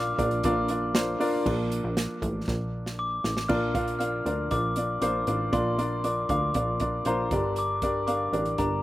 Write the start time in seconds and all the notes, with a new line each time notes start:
Already playing: A#1 A#2 F3 D4 F4 A#4 D5 F5 D6
0.18 A#1 D4 F4 A#4 D5, kick, closed hi-hat
0.31 closed hi-hat
0.43 A#1 D4 F4 A#4 D5 D6, kick, closed hi-hat
0.68 D4 F4 A#4 D5, closed hi-hat
0.95 D4 F4 A#4 C5, snare, closed hi-hat
1.20 D4 F4 A#4 D5, open hi-hat
1.45 A#1 F3 A#3 D4, kick, crash
1.72 closed hi-hat
1.84 A#1
1.97 snare, closed hi-hat
2.22 A1, kick, closed hi-hat
2.48 A#1, kick, snare
2.86 snare
2.99 D6
3.24 A1, snare
3.37 snare
3.49 A#1 A#2 F3 D4 F4 A#4 D5 F6, kick, crash
3.74 D4 F4 A#4 F5, kick, closed hi-hat
3.88 closed hi-hat
3.99 D4 F4 A#4 F5 F6, closed hi-hat
4.25 D2 D4 F4 A#4 D5, closed hi-hat
4.51 A#1 D4 F4 A#4 D5 D6, kick, closed hi-hat
4.76 D4 F4 A#4 D5, closed hi-hat
5.01 A#1 D4 F4 A#4 C5 D6, closed hi-hat
5.27 A1 D4 F4 A#4 D5, closed hi-hat
5.52 A#1 A#2 F3 D4 F4 A#4 D5 C6, kick, closed hi-hat
5.78 D4 F4 A#4 D5, closed hi-hat
6.04 D4 F4 A#4 D5 D6, closed hi-hat
6.29 D2 D4 F4 A#4 F5 D6, kick, closed hi-hat
6.54 A#1 D4 F4 A#4 D5, kick, closed hi-hat
6.80 D4 F4 A#4 D5, kick, closed hi-hat
7.05 A#1 D4 F4 A#4 C5 A#5, closed hi-hat
7.31 G1 G2 D3 D4 G4 A#4 D5, kick, closed hi-hat
7.56 D6, closed hi-hat
7.82 D4 G4 A#4 D5, kick, closed hi-hat
8.07 D4 G4 A#4 F5 D6, closed hi-hat
8.33 A1 D4 G4 A#4 D5, closed hi-hat
8.46 closed hi-hat
8.58 G1 D4 G4 A#4 D5 A#5, kick, closed hi-hat